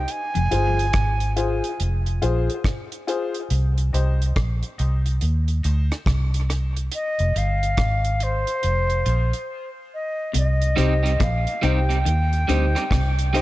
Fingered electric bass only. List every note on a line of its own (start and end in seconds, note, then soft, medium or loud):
0.36 0.51 F1 medium
0.52 0.91 G1 medium
0.94 1.60 G#1 medium
1.80 2.19 F1 medium
2.23 2.48 A#1 medium
3.51 3.90 C2 loud
3.94 4.33 C2 medium
4.37 4.61 A#1 medium
4.80 5.19 C2 medium
5.22 5.61 D#2 medium
5.65 5.89 D2 medium
6.07 6.88 C2 medium
7.20 7.34 F1 loud
7.36 7.75 G1 medium
7.78 8.44 G#1 medium
8.64 9.03 F1 medium
9.06 9.31 A#1 medium
10.35 10.74 C2 medium
10.78 11.17 C2 medium
11.21 11.45 A#1 medium
11.63 12.03 C2 medium
12.06 12.45 D#2 medium
12.49 12.74 D2 medium
12.92 13.42 C2 medium